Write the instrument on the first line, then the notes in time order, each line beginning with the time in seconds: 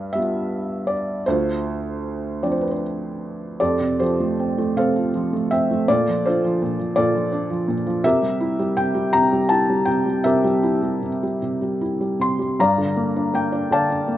felt piano
Already playing: G2 B4 F5
0.13 G3 B3 F4 E5
0.87 D5
1.26 D2 F4 C5
2.43 F3 C4 D4 D5
2.52 C5
2.61 B4
2.71 C5
3.60 F2 G4 A4 D5
3.81 C3
4.00 F3 G4 A4 C5
4.20 A3
4.40 C4
4.58 A3
4.77 C3 A4 C5 F5
4.96 F4
5.15 F3
5.33 A3
5.51 C4 E5
5.71 A3
5.88 A#2 F4 A4 D5
6.08 F3
6.25 D4 F4 A4 C5
6.45 F3
6.62 A#2
6.79 F3
6.96 A#2 F4 A4 D5
7.15 F3
7.32 D4
7.50 F3
7.68 A#2
7.87 F3
8.04 C3 G4 A#4 E5
8.22 G3
8.41 E4
8.59 G3
8.77 C3 G5
8.95 G3
9.13 C3 A#5
9.33 G3
9.49 E4 A5
9.70 G3
9.85 C3 G5
10.06 G3
10.24 C3 G4 A#4 E5
10.44 G3
10.63 E4
10.83 G3
11.03 C3
11.23 G3
11.42 C3
11.62 G3
11.81 E4
12.01 G3
12.19 C3 C6
12.39 G3
12.59 G2 D5 F5 A#5
12.78 D3
12.97 A#3
13.16 D4
13.34 A#3 G5
13.52 D4
13.71 D3 D5 F5 A5
13.90 D4
14.08 A#3